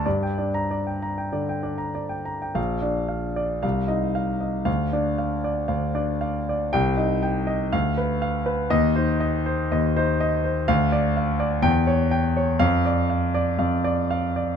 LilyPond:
<<
  \new Staff \with { instrumentName = "Grand piano" } { \time 4/4 \key g \minor \tempo 4 = 118 << { r8. bes''8 r2 r8. | \key d \phrygian f''8. r4 r16 f''8. r4 r16 | f''8. r2. r16 | g''8. r4 r16 f''8. r4 r16 |
ees''8. r2. r16 | f''8. r4 r16 g''8. r4 r16 | f''8. r2. r16 | } \\ { d''16 g''16 d''8 d''16 g''16 bes''16 g''16 d''16 g''16 d''16 bes''16 d''16 g''16 bes''16 g''16 | r8 d''8 f''8 d''8 r8 ees''8 f''8 ees''8 | r8 d''8 f''8 d''8 f''8 d''8 f''8 d''8 | r8 ees''8 g''8 ees''8 r8 b'8 f''8 b'8 |
r8 c''8 ees''8 c''8 ees''8 c''8 ees''8 c''8 | r8 d''8 f''8 d''8 r8 cis''8 g''8 cis''8 | r8 d''8 f''8 d''8 f''8 d''8 f''8 d''8 | } >> }
  \new Staff \with { instrumentName = "Grand piano" } { \clef bass \time 4/4 \key g \minor g,8 d'4 r8 d8 d'4 r8 | \key d \phrygian bes,,8 d'4 r8 c,8 ees'4 r8 | d,8 d'4 r8 d,8 d'4 r8 | c,8 ees'4 r8 d,2 |
ees,8 ees'4 r8 ees,8 ees'4 r8 | d,2 e,2 | f,2 f,2 | }
>>